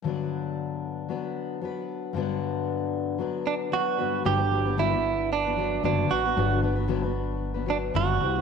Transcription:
X:1
M:4/4
L:1/16
Q:"Swing 16ths" 1/4=114
K:G
V:1 name="Clean electric guitar"
z16 | z8 z2 D2 F4 | G4 E4 D4 D2 F2- | F2 z8 D2 F4 |]
V:2 name="Steel-string acoustic guitar"
[G,,D,F,B,DB]8 [F,B,DB]4 [F,B,DB]4 | [G,,D,F,B,DB]8 [F,B,DB]4 [F,B,DB]2 [G,,D,F,B,DB]2 | [G,,D,F,B,DB] [F,B,DB] [F,B,DB] [F,B,DB] [G,,D,F,B,DB] [F,B,DB]4 [F,B,DB] [F,B,DB]2 [G,,D,F,B,DB]2 [F,B,DB] [F,B,DB] | [G,,D,F,B,DB]2 [F,B,DB] [F,B,DB] [G,,D,F,B,DB] [F,B,DB]4 [F,B,DB] [F,B,DB]2 [G,,D,F,B,DB]2 [G,CEG] [CEG] |]
V:3 name="Upright bass" clef=bass
z16 | z16 | G,,,12 F,,,2 A,,,2 | G,,,12 F,,,2 C,,2 |]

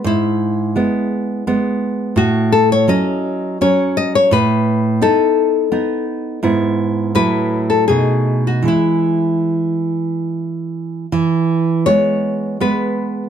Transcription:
X:1
M:3/4
L:1/16
Q:1/4=83
K:E
V:1 name="Nylon-string guitar"
E8- E2 z2 | F2 A c d4 c2 d c | B4 A6 z2 | z4 B3 A G3 F |
E8 z4 | z4 c4 B4 |]
V:2 name="Nylon-string guitar" clef=bass
G,,4 [G,B,]4 [G,B,]4 | A,,4 [F,C]4 [F,C]4 | A,,4 [B,D]4 [B,D]4 | [G,,B,E]4 [A,,F,E]4 [B,,A,D]4 |
[E,G,E]12 | E,4 [G,B,]4 [G,B,]4 |]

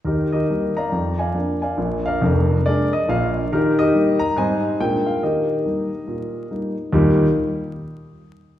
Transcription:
X:1
M:4/4
L:1/8
Q:"Swing" 1/4=140
K:Eb
V:1 name="Grand piano"
[EGB] [GBe]2 [dfb]2 [dfa]2 [dfa]- | [dfa] [Bdf]3 [ABd] e [Bdf]2 | [EGB] [GBe]2 b [cea]2 g f | [GBe]6 z2 |
[E,,B,,G,B,EG] z6 z |]
V:2 name="Grand piano" clef=bass
E,,2 [G,B,E]2 F,,2 [F,B,D]2 | [B,,,B,,]2 [F,,,F,,]2 [A,B,D]2 [B,,,B,,]2 | E,2 [G,B,E]2 [A,,G,CE]2 [B,,A,B,D]2 | E,2 [G,B,E]2 B,,2 [G,B,E]2 |
z8 |]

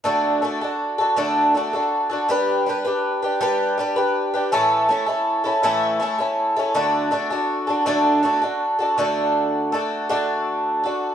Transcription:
X:1
M:6/8
L:1/16
Q:3/8=54
K:D
V:1 name="Twelve-string acoustic guitar"
[D,A,DFA]2 [A,DFA] [DFA]2 [DFA] [D,A,DFA]2 [A,DFA] [DFA]2 [DFA] | [G,DGB]2 [G,DGB] [DGB]2 [DGB] [G,DGB]2 [G,DGB] [DGB]2 [DGB] | [A,,E,A,CEA]2 [A,CEA] [A,CEA]2 [A,CEA] [A,,E,A,CEA]2 [A,CEA] [A,CEA]2 [A,CEA] | [D,A,DFA]2 [A,DFA] [DFA]2 [DFA] [D,A,DFA]2 [A,DFA] [DFA]2 [DFA] |
[D,A,DFA]4 [A,DFA]2 [D,A,DFA]4 [DFA]2 |]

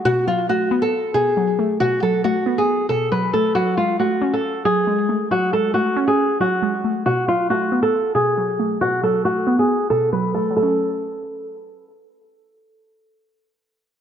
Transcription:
X:1
M:4/4
L:1/16
Q:1/4=137
K:F#m
V:1 name="Nylon-string guitar"
F2 ^E2 F3 A3 G6 | F2 A2 F3 G3 A2 B2 A2 | F2 ^E2 F3 A3 G6 | F2 A2 F3 G3 F6 |
F2 ^E2 F3 A3 G6 | F2 A2 F3 G3 A2 B2 A2 | A12 z4 | z16 |]
V:2 name="Synth pluck" clef=bass
B,,2 F,2 A,2 B,4 B,,2 F,2 A,2 | B,,2 F,2 A,2 B,4 B,,2 F,2 A,2 | F,2 G,2 A,2 C4 F,2 G,2 A,2 | F,2 G,2 A,2 C4 F,2 G,2 A,2 |
B,,2 F,2 A,2 B,4 B,,2 F,2 A,2 | B,,2 F,2 A,2 B,4 B,,2 F,2 A,2 | [F,A,C]16- | [F,A,C]16 |]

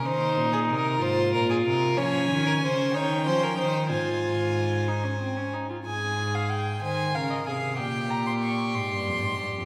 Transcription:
X:1
M:6/8
L:1/16
Q:3/8=62
K:Fphr
V:1 name="Violin"
z12 | [K:Ab] a6 g6 | a8- a2 z2 | a3 f g2 a2 f e f2 |
g2 b c' d'2 c'6 |]
V:2 name="Violin"
c3 A B2 c2 B A B2 | [K:Ab] d3 B c2 d2 c B c2 | c8- c2 z2 | A6 c2 B2 A2 |
G12 |]
V:3 name="Viola"
E6 F6 | [K:Ab] D6 E2 D2 E2 | F6 E D C D E F | z12 |
z12 |]
V:4 name="Cello" clef=bass
E,2 B,,2 C,2 A,,2 B,,2 C,2 | [K:Ab] F,2 E,2 D,2 E,2 F,2 E,2 | A,,8- A,,2 z2 | A,,6 E,2 D,2 C,2 |
B,,6 A,, G,, F,, A,, G,, F,, |]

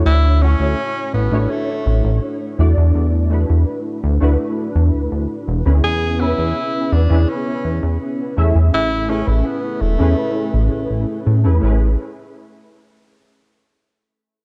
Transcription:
X:1
M:4/4
L:1/16
Q:1/4=83
K:A
V:1 name="Synth keys"
[A,DEFc]2 [A,CEFc]4- [A,CEFc] [A,DEFc]6- [A,DEFc] [A,DEFd]2- | [A,DEFd]2 [A,DEFB]4- [A,DEFB] [A,DEFB]8 [B,CEGB]- | [B,CEGB]2 [B,CEGB]4- [B,CEGB] [B,CEGB]6- [B,CEGB] [A,CEGe]2- | [A,CEGe]2 [A,CEGB]4- [A,CEGB] [A,CEGB]8 [A,CEGB] |
[A,CEGB]2 z12 z2 |]
V:2 name="Tenor saxophone"
E2 C4 B,2 A,4 z4 | z16 | G2 E4 D2 C4 z4 | E2 C A, B,2 A,6 z4 |
z16 |]
V:3 name="Analog synth bass" clef=bass
D,,3 D,, z2 A,,, A,,, z2 A,,, A,,, z2 E,, E,, | E,,3 E,, z2 D,, D,, z2 E,, D,, D,, z E,,, D,, | E,,3 E,, z2 E,, E,, z2 E,, E,, z2 E,, E,, | A,,,3 A,,, z2 E,,, E,, z2 A,,, A,,, A,,, z A,, E,, |
A,,,2 z12 z2 |]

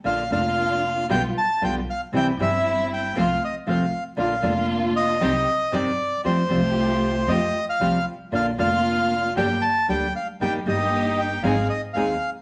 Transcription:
X:1
M:4/4
L:1/16
Q:1/4=116
K:Bb
V:1 name="Bandoneon"
f2 f6 g2 a2 g2 f2 | g2 =e4 g2 f2 _e2 f3 z | f4 z2 e6 d4 | c8 e3 f3 z2 |
f2 f6 g2 a2 g2 f2 | g2 e4 g2 f2 e2 f3 z |]
V:2 name="String section"
[B,DF]2 [B,DF]6 [G,=B,F]2 z2 [G,B,F]2 z2 | [G,C=E]2 [G,CE]6 [A,CF]2 z2 [A,CF]2 z2 | [B,DF]2 [B,DF]6 [CEG]2 z2 [CEG]2 z2 | [A,FG]2 [A,FG]6 [A,FG]2 z2 [A,FG]2 z2 |
[B,DF]2 [B,DF]6 [B,DG]2 z2 [B,DG]2 z2 | [B,EG]2 [B,EG]6 [CE_A]2 z2 [CEA]2 z2 |]
V:3 name="Nylon-string guitar"
[D,B,DF]2 [D,B,DF]2 z4 [=B,,D,G,=B,F]2 z2 [B,,D,G,B,F]2 z2 | [C,=E,G,C=E]2 [C,E,G,CE]2 z4 [C,F,A,CF]2 z2 [C,F,A,CF]2 z2 | [D,B,DF]2 [D,B,DF]2 z4 [C,E,G,CG]2 z2 [C,E,G,CG]2 z2 | [F,G,CF]2 [F,G,CF]2 z4 [F,G,CF]2 z2 [F,G,CF]2 z2 |
[D,B,DF]2 [D,B,DF]2 z4 [D,G,B,DG]2 z2 [D,G,B,DG]2 z2 | [E,G,B,EG]2 [E,G,B,EG]2 z4 [E,_A,CE_A]2 z2 [E,A,CEA]2 z2 |]
V:4 name="Upright bass" clef=bass
B,,,2 F,,,6 =B,,,2 z2 B,,,2 z2 | C,,2 G,,,6 C,,2 z2 C,,2 z2 | B,,,2 F,,,6 C,,2 z2 G,,,2 z2 | F,,2 C,,6 F,,2 z2 C,,2 z2 |
B,,,2 F,,,6 G,,,2 z2 D,,2 z2 | G,,,2 G,,,6 _A,,,2 z2 E,,2 z2 |]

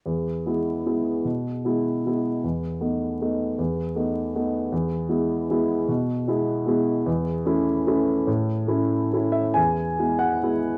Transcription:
X:1
M:3/4
L:1/8
Q:1/4=151
K:E
V:1 name="Grand piano"
z6 | z6 | z6 | z6 |
z6 | z6 | z6 | z4 z e |
g3 f3 |]
V:2 name="Grand piano"
E,,2 [G,B,E]2 [G,B,E]2 | B,,2 [G,B,E]2 [G,B,E]2 | E,,2 [A,B,D]2 [A,B,D]2 | E,,2 [A,B,D]2 [A,B,D]2 |
E,,2 [G,B,E]2 [G,B,E]2 | B,,2 [G,B,E]2 [G,B,E]2 | E,,2 [A,CE]2 [A,CE]2 | A,,2 [A,CE]2 [A,CE]2 |
E,,2 [G,B,E]2 [G,B,E]2 |]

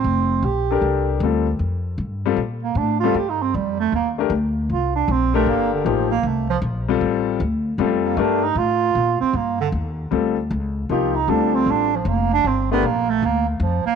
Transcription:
X:1
M:4/4
L:1/8
Q:"Swing" 1/4=155
K:Cdor
V:1 name="Grand piano"
z3 [DGAB]3 [G,CFA] z | z3 [G,CFA] z3 [G,CFA] | z4 z [A,DGB] z2 | z3 [DGAB]3 [F,B,EG] z |
z3 [G,CFA]3 z2 | [G,CFA]2 [A,DGB] z4 z | z4 [G,CFA] z3 | [F,B,EG] z [G,CFA]3 z3 |
z [A,DGB] z6 |]
V:2 name="Bass clarinet"
C2 G3 z3 | z4 z B, D F | (3G E C G, A, B, z3 | F D C A, B, D, F, B, |
A, F, z6 | A, B, D E F3 C | B, D, z6 | F E D C D F, B, D |
C =B, _B, A, B, D, F, B, |]
V:3 name="Upright bass" clef=bass
F,,,2 B,,,2 C,,2 D,,2 | F,,2 G,,2 B,,2 A,,2 | G,,2 F,,2 E,,2 D,,2 | C,,2 B,,,2 G,,,2 A,,,2 |
C,,2 B,,,2 A,,,2 D,,2 | F,,2 G,,2 A,,2 B,, z | G,,2 E,,2 D,,2 _D,,2 | C,,2 D,,2 A,,,2 F,,,2 |
G,,,2 B,,,2 D,,2 F,, z |]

